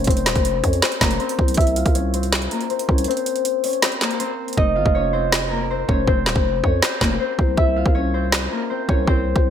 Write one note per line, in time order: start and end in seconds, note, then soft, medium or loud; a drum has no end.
0.00 1.01 A#3 medium
0.00 0.13 C#4 medium
0.00 1.28 D#4 medium
0.00 1.29 F4 medium
0.00 1.01 A#4 medium
0.00 0.13 C#5 medium
0.00 0.36 D#5 loud
0.00 0.42 F5 medium
0.04 0.28 F1 loud
0.04 0.70 C4 medium
0.04 0.70 C5 loud
0.04 kick loud
0.04 closed hi-hat medium
0.11 closed hi-hat medium
0.17 closed hi-hat medium
0.26 0.35 D#1 loud
0.26 snare medium
0.26 clap medium
0.26 closed hi-hat medium
0.36 0.63 F1 loud
0.36 kick loud
0.36 closed hi-hat medium
0.45 closed hi-hat medium
0.64 0.82 F2 loud
0.64 0.89 C#4 medium
0.64 0.89 C#5 medium
0.64 kick medium
0.64 closed hi-hat medium
0.73 closed hi-hat medium
0.82 1.20 C4 medium
0.82 1.19 C5 medium
0.82 snare loud
0.82 clap medium
0.82 closed hi-hat medium
0.92 closed hi-hat medium
1.01 1.19 F1 loud
1.01 2.52 A#3 medium
1.01 2.51 A#4 medium
1.01 kick loud
1.01 snare loud
1.01 clap medium
1.01 closed hi-hat medium
1.11 closed hi-hat medium
1.20 2.01 C4 medium
1.20 2.01 C5 medium
1.20 closed hi-hat soft
1.29 closed hi-hat medium
1.39 1.57 C2 loud
1.39 kick medium
1.48 closed hi-hat medium
1.54 1.84 C2 loud
1.54 1.82 E4 medium
1.54 1.82 E5 loud
1.54 kick loud
1.54 closed hi-hat medium
1.61 closed hi-hat medium
1.67 closed hi-hat medium
1.76 4.29 F4 medium
1.76 3.43 F5 medium
1.76 closed hi-hat medium
1.86 2.49 C2 loud
1.86 kick loud
1.86 closed hi-hat medium
1.95 2.20 C#4 medium
1.95 2.20 C#5 medium
1.95 closed hi-hat medium
2.14 2.70 C4 medium
2.14 2.70 C5 medium
2.14 closed hi-hat medium
2.23 closed hi-hat medium
2.33 snare loud
2.33 clap medium
2.33 closed hi-hat medium
2.42 closed hi-hat medium
2.51 4.02 A#3 medium
2.51 4.01 A#4 medium
2.51 closed hi-hat medium
2.61 closed hi-hat medium
2.70 2.95 C4 medium
2.70 2.95 C5 medium
2.70 closed hi-hat soft
2.79 closed hi-hat medium
2.89 3.07 C2 loud
2.89 3.14 C#4 medium
2.89 3.14 C#5 medium
2.89 kick medium
2.98 closed hi-hat medium
3.04 3.70 C5 loud
3.04 closed hi-hat medium
3.09 3.70 C4 medium
3.09 closed hi-hat medium
3.17 closed hi-hat medium
3.26 closed hi-hat medium
3.36 closed hi-hat medium
3.45 closed hi-hat medium
3.64 3.88 C#4 medium
3.64 3.88 C#5 medium
3.64 open hi-hat medium
3.73 closed hi-hat medium
3.82 4.20 C4 medium
3.82 4.19 C5 medium
3.82 snare loud
3.82 clap medium
3.82 closed hi-hat medium
3.92 closed hi-hat medium
4.01 5.51 A#3 medium
4.01 5.50 A#4 medium
4.01 snare loud
4.01 clap medium
4.01 closed hi-hat medium
4.11 closed hi-hat medium
4.19 5.01 C4 medium
4.19 5.01 C5 medium
4.19 closed hi-hat medium
4.48 closed hi-hat soft
4.53 closed hi-hat medium
4.57 4.78 F1 loud
4.57 7.28 D#4 medium
4.57 6.36 D#5 loud
4.57 kick loud
4.76 4.85 G1 loud
4.76 7.29 F4 medium
4.76 6.42 F5 medium
4.86 5.85 F1 loud
4.86 kick medium
4.95 5.19 C#4 medium
4.95 5.19 C#5 medium
5.13 5.71 C4 medium
5.13 5.70 C5 medium
5.33 snare loud
5.33 clap medium
5.51 7.01 A#3 medium
5.51 7.01 A#4 medium
5.70 5.94 C4 medium
5.70 5.94 C5 medium
5.88 6.07 F1 loud
5.88 6.13 C#4 medium
5.88 6.13 C#5 medium
5.88 kick medium
6.07 6.28 F1 loud
6.07 6.70 C4 medium
6.07 6.70 C5 medium
6.07 kick loud
6.26 6.35 D#1 loud
6.26 snare medium
6.26 clap medium
6.36 6.63 F1 loud
6.36 kick medium
6.64 6.82 F2 loud
6.64 6.89 C#4 medium
6.64 6.89 C#5 medium
6.64 kick medium
6.83 7.20 C4 medium
6.83 7.19 C5 medium
6.83 snare loud
6.83 clap medium
7.01 7.19 F1 loud
7.01 8.52 A#3 medium
7.01 8.51 A#4 medium
7.01 kick loud
7.01 snare loud
7.01 clap medium
7.20 8.01 C4 medium
7.20 8.01 C5 medium
7.39 7.57 C2 loud
7.39 kick medium
7.57 7.84 C2 loud
7.57 7.82 E4 medium
7.57 7.82 E5 loud
7.57 kick loud
7.76 9.50 F4 medium
7.76 9.43 F5 medium
7.86 8.49 C2 loud
7.86 kick loud
7.95 8.20 C#4 medium
7.95 8.20 C#5 medium
8.14 8.70 C4 medium
8.14 8.70 C5 medium
8.32 snare loud
8.32 clap medium
8.52 9.50 A#3 medium
8.52 9.50 A#4 medium
8.70 8.95 C4 medium
8.70 8.95 C5 medium
8.89 9.07 C2 loud
8.89 9.14 C#4 medium
8.89 9.14 C#5 medium
8.89 kick medium
9.07 9.34 C2 loud
9.07 9.50 C4 medium
9.07 9.50 C5 loud
9.07 kick loud
9.36 9.50 C2 loud
9.36 kick loud